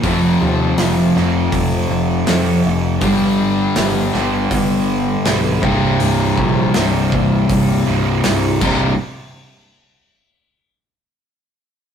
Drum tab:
CC |--------|--------|-------x|--------|
HH |o-o-o-o-|o-o-o-o-|o-o-o-o-|--------|
SD |--oo--o-|--oo--o-|--o---o-|--------|
BD |o---o---|o---o--o|-o-oo--o|--------|